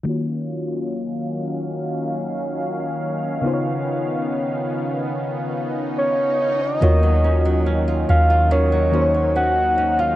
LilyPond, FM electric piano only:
\new Staff \with { instrumentName = "FM electric piano" } { \time 4/4 \key ees \minor \tempo 4 = 71 <ees bes f' ges' des''>1 | <des ces' ees' f' c'' des''>1 | <ees bes f' ges' des''>4. r4 <ees bes ees' ges' c'' des''>4 r8 | }